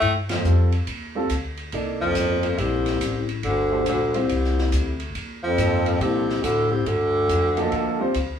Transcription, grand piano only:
0, 0, Header, 1, 2, 480
1, 0, Start_track
1, 0, Tempo, 427655
1, 24, Time_signature, 4, 2, 24, 8
1, 9419, End_track
2, 0, Start_track
2, 0, Title_t, "Grand piano"
2, 0, Program_c, 0, 0
2, 500, Note_on_c, 0, 55, 53
2, 507, Note_on_c, 0, 60, 46
2, 510, Note_on_c, 0, 65, 48
2, 516, Note_on_c, 0, 69, 56
2, 781, Note_off_c, 0, 55, 0
2, 784, Note_off_c, 0, 60, 0
2, 786, Note_off_c, 0, 65, 0
2, 789, Note_off_c, 0, 69, 0
2, 1292, Note_on_c, 0, 55, 65
2, 1296, Note_on_c, 0, 60, 63
2, 1302, Note_on_c, 0, 65, 60
2, 1305, Note_on_c, 0, 69, 72
2, 1446, Note_off_c, 0, 55, 0
2, 1448, Note_off_c, 0, 60, 0
2, 1450, Note_off_c, 0, 65, 0
2, 1452, Note_off_c, 0, 69, 0
2, 1941, Note_on_c, 0, 58, 53
2, 1950, Note_on_c, 0, 63, 52
2, 1951, Note_on_c, 0, 69, 50
2, 1958, Note_on_c, 0, 74, 61
2, 3280, Note_off_c, 0, 58, 0
2, 3284, Note_off_c, 0, 63, 0
2, 3285, Note_off_c, 0, 69, 0
2, 3288, Note_off_c, 0, 74, 0
2, 4163, Note_on_c, 0, 57, 66
2, 4169, Note_on_c, 0, 62, 61
2, 4170, Note_on_c, 0, 67, 59
2, 4178, Note_on_c, 0, 72, 75
2, 4321, Note_off_c, 0, 57, 0
2, 4324, Note_off_c, 0, 62, 0
2, 4324, Note_off_c, 0, 67, 0
2, 4328, Note_off_c, 0, 72, 0
2, 4645, Note_on_c, 0, 55, 63
2, 4649, Note_on_c, 0, 60, 62
2, 4656, Note_on_c, 0, 65, 55
2, 4658, Note_on_c, 0, 72, 69
2, 4802, Note_off_c, 0, 55, 0
2, 4804, Note_off_c, 0, 60, 0
2, 4807, Note_off_c, 0, 65, 0
2, 4808, Note_off_c, 0, 72, 0
2, 6257, Note_on_c, 0, 53, 64
2, 6263, Note_on_c, 0, 58, 53
2, 6271, Note_on_c, 0, 63, 52
2, 6273, Note_on_c, 0, 69, 64
2, 6988, Note_off_c, 0, 53, 0
2, 6991, Note_off_c, 0, 58, 0
2, 6995, Note_off_c, 0, 63, 0
2, 6996, Note_off_c, 0, 69, 0
2, 8493, Note_on_c, 0, 53, 80
2, 8498, Note_on_c, 0, 58, 75
2, 8505, Note_on_c, 0, 75, 66
2, 8511, Note_on_c, 0, 69, 82
2, 8943, Note_off_c, 0, 53, 0
2, 8946, Note_off_c, 0, 58, 0
2, 8949, Note_off_c, 0, 75, 0
2, 8952, Note_off_c, 0, 69, 0
2, 8974, Note_on_c, 0, 55, 76
2, 8979, Note_on_c, 0, 60, 66
2, 8982, Note_on_c, 0, 65, 68
2, 8988, Note_on_c, 0, 72, 81
2, 9128, Note_off_c, 0, 55, 0
2, 9130, Note_off_c, 0, 60, 0
2, 9131, Note_off_c, 0, 65, 0
2, 9135, Note_off_c, 0, 72, 0
2, 9419, End_track
0, 0, End_of_file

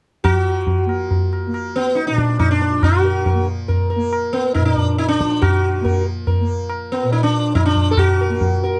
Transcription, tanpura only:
0, 0, Header, 1, 2, 480
1, 0, Start_track
1, 0, Tempo, 429799
1, 270, Time_signature, 3, 2, 24, 8
1, 9824, End_track
2, 0, Start_track
2, 0, Title_t, "Tanpura"
2, 0, Program_c, 0, 104
2, 273, Note_on_c, 0, 53, 53
2, 959, Note_on_c, 0, 58, 53
2, 1641, Note_off_c, 0, 58, 0
2, 1641, Note_on_c, 0, 58, 51
2, 2340, Note_on_c, 0, 46, 54
2, 3010, Note_off_c, 0, 53, 0
2, 3014, Note_on_c, 0, 53, 51
2, 3732, Note_off_c, 0, 58, 0
2, 3732, Note_on_c, 0, 58, 54
2, 4423, Note_off_c, 0, 58, 0
2, 4423, Note_on_c, 0, 58, 61
2, 5090, Note_off_c, 0, 46, 0
2, 5095, Note_on_c, 0, 46, 49
2, 5790, Note_off_c, 0, 53, 0
2, 5794, Note_on_c, 0, 53, 51
2, 6489, Note_off_c, 0, 58, 0
2, 6489, Note_on_c, 0, 58, 60
2, 7150, Note_off_c, 0, 58, 0
2, 7150, Note_on_c, 0, 58, 56
2, 7846, Note_off_c, 0, 46, 0
2, 7850, Note_on_c, 0, 46, 54
2, 8548, Note_off_c, 0, 53, 0
2, 8553, Note_on_c, 0, 53, 53
2, 9262, Note_off_c, 0, 58, 0
2, 9262, Note_on_c, 0, 58, 54
2, 9824, Note_off_c, 0, 46, 0
2, 9824, Note_off_c, 0, 53, 0
2, 9824, Note_off_c, 0, 58, 0
2, 9824, End_track
0, 0, End_of_file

